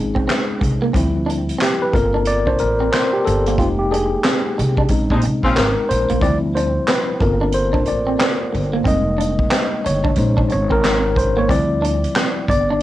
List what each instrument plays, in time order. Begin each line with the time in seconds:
Already playing: upright bass G#1, tine electric piano G#3 C4 C#4 D#4 G#4
0.15 clean electric guitar C4, kick
0.27 clean electric guitar C4, snare, clap, closed hi-hat
0.61 upright bass C2, muted clean electric guitar stroke, kick, closed hi-hat
0.82 clean electric guitar A#3
0.93 upright bass D2, tine electric piano F3 G3 C4 E4, clean electric guitar C4, kick, closed hi-hat
1.26 clean electric guitar D4, closed hi-hat
1.49 closed hi-hat
1.59 clean electric guitar C4, tine electric piano G4, snare, clap
1.63 closed hi-hat
1.82 tine electric piano B4
1.93 upright bass G1, tine electric piano A#3 C4 F4 A4 A#4, muted clean electric guitar stroke, kick, closed hi-hat
2.14 clean electric guitar D4
2.25 tine electric piano D5, closed hi-hat
2.47 clean electric guitar D4, tine electric piano C5, kick
2.58 upright bass A1, tine electric piano A#4, muted clean electric guitar stroke, closed hi-hat
2.80 clean electric guitar C4
2.92 clean electric guitar C4, tine electric piano C5, snare, clap, closed hi-hat
3.13 tine electric piano G4
3.25 upright bass G1, tine electric piano A4, muted clean electric guitar stroke, closed hi-hat
3.46 clean electric guitar A#3, closed hi-hat
3.58 upright bass F1, tine electric piano G#3 A#3 D#4 F4 G4, clean electric guitar C4, kick, closed hi-hat
3.79 tine electric piano G4
3.91 clean electric guitar D4, tine electric piano G#4, closed hi-hat
4.24 clean electric guitar C4, snare, clap, closed hi-hat
4.58 upright bass C2, muted clean electric guitar stroke, closed hi-hat
4.77 clean electric guitar D4, kick
4.88 upright bass A#1, tine electric piano G#3 C4 C#4 D#4, kick, closed hi-hat
5.10 upright bass A#2, horn section C3 G#3 D#4, clean electric guitar D4, kick
5.21 upright bass C2, muted clean electric guitar stroke, closed hi-hat
5.43 upright bass A#1, horn section C#3 C4 F4, clean electric guitar C4, kick
5.56 upright bass G#1, clean electric guitar C4, tine electric piano A#4, snare, clap, closed hi-hat
5.89 upright bass A#1, tine electric piano C5, muted clean electric guitar stroke, closed hi-hat
6.09 upright bass A#1, clean electric guitar A#3, closed hi-hat
6.21 upright bass D2, tine electric piano F3 G3 C4 E4 D5, clean electric guitar C4, kick, closed hi-hat
6.55 clean electric guitar D4, tine electric piano C5, closed hi-hat
6.88 clean electric guitar C4, tine electric piano B4, snare, clap, closed hi-hat
7.20 upright bass G1, tine electric piano A#3 C4 F4 A4 A#4, muted clean electric guitar stroke, kick, closed hi-hat
7.41 clean electric guitar D4
7.52 tine electric piano C5, closed hi-hat
7.73 clean electric guitar D4, kick
7.85 upright bass A1, tine electric piano D5, muted clean electric guitar stroke, closed hi-hat
8.07 clean electric guitar C4
8.19 clean electric guitar C4, snare, clap, closed hi-hat
8.53 upright bass G1, muted clean electric guitar stroke, closed hi-hat
8.74 clean electric guitar A#3
8.84 upright bass F1, tine electric piano G3 G#3 A#3 D#4 D#5, clean electric guitar C4, kick, closed hi-hat
9.18 clean electric guitar D4, closed hi-hat
9.39 kick
9.51 clean electric guitar C4, snare, clap, closed hi-hat
9.85 upright bass G1, tine electric piano C#5, muted clean electric guitar stroke, closed hi-hat
10.04 clean electric guitar D4, kick
10.16 upright bass A#1, tine electric piano G#3 C#4 D#4 C5, kick, closed hi-hat
10.37 clean electric guitar D4, kick
10.50 upright bass G#1, tine electric piano C#5, muted clean electric guitar stroke, closed hi-hat
10.70 clean electric guitar C4, tine electric piano A#4, kick
10.84 clean electric guitar C4, snare, clap, closed hi-hat
11.16 tine electric piano C5, muted clean electric guitar stroke, kick, closed hi-hat
11.37 clean electric guitar A#3, tine electric piano C#5
11.49 upright bass D2, tine electric piano F3 G3 C4 E4 D5, clean electric guitar C4, kick, closed hi-hat
11.82 clean electric guitar D4, closed hi-hat
12.04 closed hi-hat
12.16 clean electric guitar C4, snare, clap, closed hi-hat
12.48 upright bass G1, tine electric piano D5, muted clean electric guitar stroke, kick, closed hi-hat
12.70 clean electric guitar D4